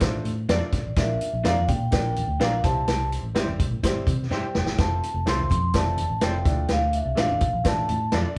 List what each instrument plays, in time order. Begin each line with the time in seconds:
0.00 fingered electric bass A1, upright piano A3 D4 F4 A4 C5, kick, snare, closed hi-hat, high conga
0.24 fingered electric bass A2, closed hi-hat, high conga
0.49 fingered electric bass F2, upright piano A3 D4 F4 A4 D5, clean electric guitar D4 F4 A4 D5, vibraphone D5, snare, closed hi-hat
0.72 fingered electric bass G1, kick, snare, closed hi-hat, muted conga, low conga
0.85 fingered electric bass A1
0.96 fingered electric bass A#1, upright piano A#3 D4 F4 A#4 D5, vibraphone E5, kick, snare, closed hi-hat
1.21 closed hi-hat, muted conga
1.33 fingered electric bass A#1
1.44 fingered electric bass F2, upright piano A#3 D4 F4 A#4 D5, clean electric guitar D4 F4 A#4 D5, vibraphone F5, snare, closed hi-hat, muted conga
1.57 high conga
1.68 fingered electric bass A#2, vibraphone G5, kick, closed hi-hat, muted conga, low conga
1.91 fingered electric bass A#1, upright piano A#3 D4 F4 A#4 D5, vibraphone G5, kick, snare, closed hi-hat, high conga
2.16 closed hi-hat, muted conga, high conga
2.28 fingered electric bass D2
2.40 fingered electric bass A#1, upright piano A#3 D4 F4 A#4 D5, clean electric guitar D4 F4 A#4 D5, vibraphone F5, snare, closed hi-hat, muted conga
2.64 fingered electric bass C2, upright piano G3 C4 E4 G4 C5, vibraphone A5, kick, snare, closed hi-hat, muted conga, low conga
2.88 fingered electric bass C2, snare, closed hi-hat, muted conga
3.12 closed hi-hat, muted conga
3.23 fingered electric bass A1
3.35 fingered electric bass G1, upright piano G3 C4 E4 G4 C5, clean electric guitar C4 E4 G4 C5, snare, closed hi-hat, muted conga
3.48 high conga
3.60 kick, closed hi-hat, muted conga, low conga
3.71 fingered electric bass A1
3.83 fingered electric bass G1, upright piano G3 C4 E4 G4 C5, kick, snare, closed hi-hat, muted conga, high conga, low conga
4.07 fingered electric bass C3, kick, closed hi-hat, muted conga, high conga
4.31 fingered electric bass G2, upright piano G3 C4 E4 G4 C5, clean electric guitar C4 E4 G4 C5, vibraphone G5, snare, muted conga
4.55 fingered electric bass F1, snare, low conga
4.66 fingered electric bass G1, snare
4.77 fingered electric bass F1, upright piano A3 C4 F4 A4 C5, vibraphone A5, kick, snare, closed hi-hat, muted conga
5.03 closed hi-hat, muted conga
5.14 fingered electric bass F1
5.26 fingered electric bass C2, upright piano A3 C4 F4 A4 C5, clean electric guitar C4 F4 A4 C5, vibraphone C6, snare, closed hi-hat, muted conga
5.39 high conga
5.50 fingered electric bass F2, vibraphone C6, kick, closed hi-hat, muted conga, low conga
5.74 fingered electric bass F1, upright piano A3 C4 F4 A4 D5, vibraphone A5, kick, snare, closed hi-hat, muted conga, high conga
5.98 closed hi-hat, high conga
6.10 fingered electric bass A1
6.21 fingered electric bass F1, upright piano A3 C4 F4 A4 D5, clean electric guitar C4 F4 A4 C5, vibraphone G5, snare, closed hi-hat, muted conga
6.45 fingered electric bass D2, upright piano A3 D4 E4 A4 D5, kick, snare, closed hi-hat, muted conga, low conga
6.51 upright piano F4
6.68 fingered electric bass D2, vibraphone F5, snare, closed hi-hat
6.93 vibraphone E5, closed hi-hat
7.05 fingered electric bass C2
7.15 fingered electric bass A1, upright piano A3 D4 F4 A4 D5, clean electric guitar D4 F4 A4, vibraphone F5, snare, closed hi-hat
7.19 clean electric guitar D5
7.29 high conga
7.41 kick, closed hi-hat, muted conga, low conga
7.53 fingered electric bass A#1
7.64 fingered electric bass A1, upright piano A3 D4 F4 A4 D5, vibraphone A5, kick, snare, closed hi-hat, muted conga, high conga
7.89 fingered electric bass A2, closed hi-hat, muted conga, high conga
8.12 fingered electric bass F2, upright piano A3 D4 F4 A4 D5, clean electric guitar D4 F4 A4 D5, vibraphone D5, snare, closed hi-hat, muted conga